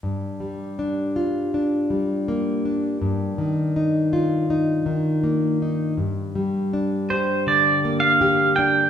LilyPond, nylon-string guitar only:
\new Staff \with { instrumentName = "Nylon-string guitar" } { \time 4/4 \key g \minor \tempo 4 = 81 << { r4 d'8 f'8 d'4 bes8 d'8 | r4 ees'8 f'8 ees'4 bes8 ees'8 | r4 d'8 g'4 bes8 g'8 d'8 | } \\ { g,8 g2 g4. | g,8 ees2 ees4. | g,8 g4. d2 | } >> }